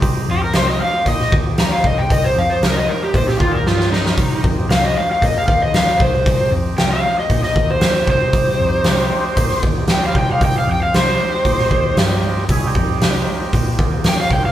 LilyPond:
<<
  \new Staff \with { instrumentName = "Electric slide guitar" } { \time 4/4 \key c \minor \tempo 4 = 116 r8 g'16 bes'16 c''16 ees''16 f''8 ees''8 r8 bes''16 f''16 ees''16 g''16 | ees''16 c''16 f''16 c''16 bes'16 ees''16 bes'16 g'16 c''16 g'16 f'16 bes'16 f'8 ees'8~ | ees'8 r8 f''16 ees''16 f''16 f''16 ees''16 f''16 f''16 ees''16 f''8 c''8~ | c''8 r8 g''16 f''8 ees''8 ees''8 c''8. c''8~ |
c''2~ c''8 r8 g''16 f''16 g''16 f''16 | g''16 f''16 g''16 f''16 c''2 r4 | r2. g''16 f''16 g''16 f''16 | }
  \new Staff \with { instrumentName = "Tonewheel organ" } { \time 4/4 \key c \minor <c' ees' g'>1~ | <c' ees' g'>1 | <c' ees' g'>1~ | <c' ees' g'>1 |
<g c' ees' g'>1~ | <g c' ees' g'>1 | \tuplet 3/2 { <aes des' e' aes'>8 <g c' ees' g'>4~ } <g c' ees' g'>2. | }
  \new Staff \with { instrumentName = "Picked electric bass" } { \clef bass \time 4/4 \key c \minor c,8 f,8 c,8 r8 bes,8 ees,4 c,8 | c,8 f,8 c,8 r8 bes,8 ees,8 g,4 | c,8 f,8 c,8 r8 bes,8 ees,4 c,8 | c,8 f,8 c,8 r8 bes,8 ees,4 c,8 |
c,8 f,8 c,8 r8 bes,8 ees,4 c,8 | c,8 f,8 c,8 r8 bes,8 ees,8 g,4 | c,8 f,8 c,8 r8 bes,8 ees,4 c,8 | }
  \new DrumStaff \with { instrumentName = "Drums" } \drummode { \time 4/4 <hho bd>4 <hho sn>4 <hho bd>16 sn16 bd8 <hho sn>8 bd8 | <hho bd>4 <hho sn>4 <hho bd>16 sn16 bd8 sn16 sn16 sn16 sn16 | <hho bd>8 bd8 <hho sn>4 <hho bd>8 bd8 <hho sn>8 bd8 | <hho bd>4 <hho sn>4 <hho bd>16 sn16 bd8 <hho sn>8 bd8 |
<hho bd>4 <hho sn>4 <hho bd>16 sn16 bd8 <hho sn>8 bd8 | <hho bd>4 <hho sn>4 <hho bd>16 sn16 bd8 <hho sn>4 | <hho bd>8 bd8 <hho sn>4 <hho bd>8 bd8 <hho sn>8 bd8 | }
>>